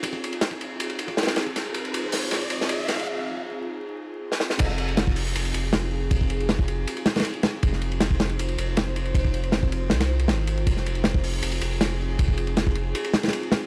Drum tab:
CC |--------------------------------|--------------------------------|--------------------------------|x-------------------------------|
RD |x---x-x-x---x---x-x-x---xxx-x---|x---x-x-x-----x-x-x-x---x---x-x-|--------------------------------|x---x-x-x-----x-x-x-x---x-------|
HH |--------------------------------|------------o-------------------|--------------------------------|------------o-------------------|
SD |--------o---------------ooo-o---|o-----------o---o-----o-----o---|--------------------------o-o-o-|--o-----o---------------o-------|
BD |o-o-------o-----------o-------o-|--------------------------------|--------------------------------|o---------o---------------------|

CC |--------------------------------|--------------------------------|--------------------------------|--------------------------------|
RD |x---x-x-x---x---x-x-x-xxx-x-x---|x---x-x-x---x-x-x-x-x---x---x-x-|x---x-x-x---x---x-x---x-x---x-x-|x---x-x-x-----x-x-x-x---x-------|
HH |--------------------------------|--------------------------------|--------------------------------|------------o-------------------|
SD |--------o-----------o-oo----o---|--o-----o---o-----------o-------|--------o-------o-o-----o-------|--o-----o---------------o-------|
BD |o-o-------o---------------------|o---------o---------------------|o-o-------o---------------------|o---------o---------------------|

CC |--------------------------------|
RD |x---x-x-x---x---x-x-x-xxx-x-x---|
HH |--------------------------------|
SD |--------o-----------o-oo----o---|
BD |o-o-------o---------------------|